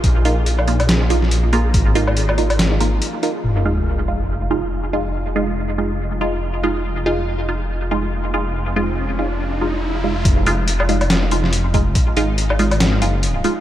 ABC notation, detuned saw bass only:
X:1
M:4/4
L:1/8
Q:"Swing 16ths" 1/4=141
K:Fm
V:1 name="Detuned saw bass" clef=bass
B,,,4 B,,,4 | A,,,6 z2 | F,,,8- | F,,,8- |
F,,,8- | F,,,8 | F,,,4 F,,,4 | z A,,,4 _G,,,2 z |]